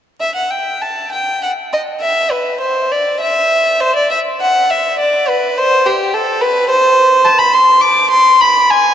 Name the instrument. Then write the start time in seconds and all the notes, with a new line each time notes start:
violin
0.20 E5
0.36 F#5
0.51 G5
0.82 A5
1.13 G5
1.43 F#5
1.73 D#5
2.01 E5
2.31 B4
2.61 C5
2.92 D5
3.21 E5
3.81 C5
3.96 D5
4.11 E5
4.41 F#5
4.71 E5
5.00 D5
5.29 B4
5.58 C5
5.86 G4
6.14 A4
6.41 B4
6.70 C5
7.25 A5
7.39 B5
7.53 C6
7.81 D6
8.10 C6
8.41 B5
8.70 G#5